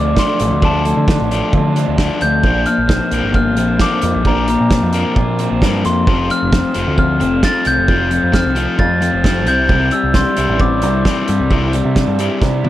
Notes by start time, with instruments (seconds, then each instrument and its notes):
Already playing: picked electric bass D2, overdriven electric guitar F3 A3 D4 F4, glockenspiel D6
0.17 overdriven electric guitar D3 F3 A3 D4, glockenspiel C6, kick, snare
0.39 picked electric bass A1, overdriven electric guitar F3 A3, snare, closed hi-hat
0.51 picked electric bass D2
0.62 overdriven electric guitar D3 F3 A3 D4, glockenspiel A5, kick
0.84 overdriven electric guitar F3 A3, glockenspiel A5, closed hi-hat
0.97 picked electric bass D3
1.07 overdriven electric guitar F3 A3 D4, kick, snare
1.21 picked electric bass A1
1.31 overdriven electric guitar F3 A3 D4, closed hi-hat
1.52 picked electric bass D3, overdriven electric guitar F3 A3 F4, kick
1.75 overdriven electric guitar F3 A3 D4, closed hi-hat
1.88 picked electric bass D2
1.98 overdriven electric guitar D3 F3 A3 D4, kick, snare
2.21 picked electric bass D2, overdriven electric guitar F3 A3, glockenspiel G6, closed hi-hat
2.42 picked electric bass A#1, overdriven electric guitar A#2 F3 A#3, kick
2.46 overdriven electric guitar D4
2.65 overdriven electric guitar F3 A#3, glockenspiel F6, closed hi-hat
2.78 picked electric bass A#1
2.88 overdriven electric guitar F3 A#3 C4, kick, snare
3.10 picked electric bass A#1, overdriven electric guitar F3 A#3 D4, closed hi-hat
3.23 picked electric bass G1
3.33 overdriven electric guitar F3 A#3 F4, glockenspiel F6, kick
3.56 picked electric bass A#1, overdriven electric guitar F3 A#3 C4, closed hi-hat
3.79 overdriven electric guitar D3 F3 A#3 D4, glockenspiel D6, kick, snare
4.02 picked electric bass F2, overdriven electric guitar F3 A#3, closed hi-hat
4.15 picked electric bass A#1
4.25 overdriven electric guitar A#2 F3 A#3 D4, glockenspiel A#5, kick
4.48 overdriven electric guitar F3 A#3, glockenspiel A#5, closed hi-hat
4.61 picked electric bass A#2
4.71 overdriven electric guitar F3 A#3 C4, kick, snare
4.83 picked electric bass F2
4.93 overdriven electric guitar F3 A#3 D4, closed hi-hat
5.16 picked electric bass A#2, overdriven electric guitar F3 A#3 F4, kick
5.39 overdriven electric guitar F3 A#3 C4, closed hi-hat
5.51 picked electric bass A#1
5.62 picked electric bass G2, overdriven electric guitar D3 F3 A#3 D4, kick, snare
5.85 picked electric bass F2, overdriven electric guitar F3 A#3, glockenspiel C6, snare, closed hi-hat
6.07 picked electric bass F1, overdriven electric guitar F2 F3 C4 F4, kick
6.29 overdriven electric guitar F3 A3 C4, glockenspiel F6, closed hi-hat
6.43 picked electric bass F1
6.52 overdriven electric guitar F3 C4, kick, snare
6.74 picked electric bass F1, overdriven electric guitar F3 A3 C4 F4, closed hi-hat
6.87 picked electric bass D2
6.97 overdriven electric guitar F3 C4 F4, glockenspiel F6, kick
7.19 picked electric bass F1, overdriven electric guitar F3 C4, closed hi-hat
7.43 overdriven electric guitar F3 C4 F4, glockenspiel A6, kick, snare
7.65 picked electric bass C2, overdriven electric guitar F3 A3 C4, glockenspiel G6, closed hi-hat
7.78 picked electric bass F1
7.88 overdriven electric guitar F2 F3 C4 F4, kick
8.10 overdriven electric guitar F3 A3 C4, closed hi-hat
8.23 picked electric bass F2
8.32 overdriven electric guitar F3 C4, glockenspiel F6, kick, snare
8.46 picked electric bass C2
8.55 overdriven electric guitar F3 A3 C4 F4, closed hi-hat
8.77 picked electric bass F2, overdriven electric guitar F3 C4 F4, glockenspiel A6, kick
9.01 overdriven electric guitar F3 C4, closed hi-hat
9.13 picked electric bass F1
9.24 overdriven electric guitar F3 C4 F4, kick, snare
9.47 picked electric bass C2, overdriven electric guitar C3 G3 C4 E4, glockenspiel G6, closed hi-hat
9.69 picked electric bass C2, overdriven electric guitar C3 G3 C4 E4, kick
9.91 overdriven electric guitar G3 C4, glockenspiel E6, closed hi-hat
10.04 picked electric bass C2
10.14 overdriven electric guitar G3 C4 D4, glockenspiel C6, kick, snare
10.36 picked electric bass C2, overdriven electric guitar G3 C4 E4, closed hi-hat
10.49 picked electric bass A1
10.59 overdriven electric guitar G3 C4 E4, glockenspiel D6, kick
10.82 picked electric bass C2, overdriven electric guitar G3 C4 D4, closed hi-hat
11.04 overdriven electric guitar E3 G3 C4 E4, kick, snare
11.28 picked electric bass G2, overdriven electric guitar G3 C4, closed hi-hat
11.40 picked electric bass C2
11.50 overdriven electric guitar C3 G3 C4 E4, kick
11.73 overdriven electric guitar G3 C4, closed hi-hat
11.85 picked electric bass C3
11.95 overdriven electric guitar G3 C4 D4, kick, snare
12.08 picked electric bass G2
12.19 overdriven electric guitar G3 C4 E4, closed hi-hat
12.40 picked electric bass C3, overdriven electric guitar G3 C4 E4, kick, snare
12.64 overdriven electric guitar G3 C4 D4, high tom